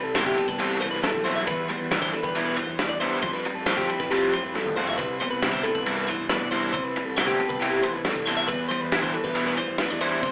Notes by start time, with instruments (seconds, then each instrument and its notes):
Already playing: clean electric guitar C3 E3 G3 E4
0.04 fingered electric bass C2, clean electric guitar A4
0.15 fingered electric bass C3, overdriven electric guitar E3 A3 C4 E4, clean electric guitar B3 C5, snare, ride
0.26 clean electric guitar G4, kick
0.38 clean electric guitar A4, muted overdriven electric guitar stroke, ride
0.48 fingered electric bass C2, clean electric guitar B4, kick
0.59 clean electric guitar C3 G4, overdriven electric guitar E3 A3 C4 E4, ride
0.81 clean electric guitar E3 C5, muted overdriven electric guitar stroke, ride
0.91 fingered electric bass C2, clean electric guitar B4, snare
1.03 clean electric guitar G3 A4, muted overdriven electric guitar stroke, snare, ride
1.15 fingered electric bass B1, kick
1.24 overdriven electric guitar E3 A3 C4 E4, clean electric guitar B3 C5, ride
1.36 clean electric guitar E5
1.47 clean electric guitar E2 B4, fingered electric bass E2, muted overdriven electric guitar stroke, kick, ride
1.68 clean electric guitar G3 C5, muted overdriven electric guitar stroke, ride
1.80 fingered electric bass E2, clean electric guitar B4
1.91 overdriven electric guitar E3 G3 B3 E4, fingered electric bass E3, clean electric guitar D4, snare, ride
2.02 clean electric guitar C5, kick
2.12 clean electric guitar E4 A4, muted overdriven electric guitar stroke, ride
2.23 fingered electric bass E2, clean electric guitar G4 B4, kick
2.35 clean electric guitar B2, overdriven electric guitar E3 G3 B3 E4, ride
2.45 clean electric guitar B4
2.56 clean electric guitar E3 C5, muted overdriven electric guitar stroke, ride
2.69 fingered electric bass E2
2.78 clean electric guitar G3 B4, muted overdriven electric guitar stroke, snare, ride
2.89 fingered electric bass E2, clean electric guitar D5
3.00 overdriven electric guitar E3 G3 B3 E4, clean electric guitar D4 C5, ride
3.22 clean electric guitar F2 C5, fingered electric bass F2, muted overdriven electric guitar stroke, kick, ride
3.33 clean electric guitar B4, snare
3.44 clean electric guitar G3, muted overdriven electric guitar stroke, ride
3.55 fingered electric bass F2, clean electric guitar A4
3.66 fingered electric bass F3, overdriven electric guitar F3 A3 C4 F4, clean electric guitar C4 C5, snare, ride
3.77 clean electric guitar G4, kick
3.89 clean electric guitar E4, muted overdriven electric guitar stroke, ride
4.00 fingered electric bass F2, clean electric guitar B4, kick, snare
4.11 clean electric guitar C3 G4, overdriven electric guitar F3 A3 C4 F4, ride
4.32 clean electric guitar F3 C5, muted overdriven electric guitar stroke, ride
4.44 fingered electric bass F2, clean electric guitar B4
4.54 clean electric guitar G3 A4, muted overdriven electric guitar stroke, snare
4.65 fingered electric bass F2, high tom
4.76 overdriven electric guitar F3 A3 C4 F4, clean electric guitar C4 C5, mid tom
4.87 clean electric guitar E5, floor tom
4.98 fingered electric bass C2, clean electric guitar C3 B4, muted overdriven electric guitar stroke, kick, ride
5.20 clean electric guitar B3 C5, muted overdriven electric guitar stroke, ride
5.31 fingered electric bass C2, clean electric guitar B4
5.42 fingered electric bass C3, overdriven electric guitar E3 G3 C4 E4, clean electric guitar B3, snare, ride
5.52 clean electric guitar D4 C5, kick
5.63 clean electric guitar E4 A4, muted overdriven electric guitar stroke, ride
5.75 fingered electric bass C2, clean electric guitar B4, kick
5.86 clean electric guitar G2, overdriven electric guitar E3 G3 C4 E4, ride
5.97 clean electric guitar B4
6.07 clean electric guitar E3 C5, muted overdriven electric guitar stroke, ride
6.19 fingered electric bass C2
6.29 clean electric guitar B3 B4, muted overdriven electric guitar stroke, snare, ride
6.40 fingered electric bass C2, clean electric guitar D5
6.51 overdriven electric guitar E3 G3 C4 E4, clean electric guitar D4 C5, ride
6.72 fingered electric bass C2, clean electric guitar C3 C5, muted overdriven electric guitar stroke, kick, ride
6.84 clean electric guitar B4
6.96 clean electric guitar G3, muted overdriven electric guitar stroke, ride
7.05 fingered electric bass C2, clean electric guitar A4
7.16 fingered electric bass C3, overdriven electric guitar E3 A3 C4 E4, clean electric guitar B3 C5, snare, ride
7.27 clean electric guitar G4, kick
7.39 clean electric guitar A4, muted overdriven electric guitar stroke, ride
7.49 fingered electric bass C2, clean electric guitar B4, kick
7.60 clean electric guitar C3 G4, overdriven electric guitar E3 A3 C4 E4, ride
7.83 clean electric guitar E3 C5, muted overdriven electric guitar stroke, ride
7.93 fingered electric bass C2, clean electric guitar B4
8.04 clean electric guitar G3 A4, muted overdriven electric guitar stroke, snare, ride
8.16 fingered electric bass C2, kick
8.26 overdriven electric guitar E3 A3 C4 E4, clean electric guitar B3 C5, ride
8.37 clean electric guitar E5
8.48 clean electric guitar E2 B4, fingered electric bass E2, muted overdriven electric guitar stroke, kick, ride
8.69 clean electric guitar G3 C5, muted overdriven electric guitar stroke, ride
8.81 fingered electric bass E2, clean electric guitar B4
8.92 overdriven electric guitar E3 G3 B3 E4, fingered electric bass E3, clean electric guitar D4, snare, ride
9.02 clean electric guitar C5, kick
9.13 clean electric guitar E4 A4, muted overdriven electric guitar stroke, ride
9.24 fingered electric bass E2, clean electric guitar G4 B4, kick, snare
9.35 clean electric guitar B2, overdriven electric guitar E3 G3 B3 E4, ride
9.46 clean electric guitar B4, snare
9.57 clean electric guitar E3 C5, muted overdriven electric guitar stroke, ride
9.70 fingered electric bass E2
9.78 clean electric guitar G3 B4, muted overdriven electric guitar stroke, snare, ride
9.90 fingered electric bass E2, clean electric guitar D5
10.01 overdriven electric guitar E3 G3 B3 E4, clean electric guitar D4 C5, ride
10.22 fingered electric bass C2, clean electric guitar C3 C5, muted overdriven electric guitar stroke, kick, ride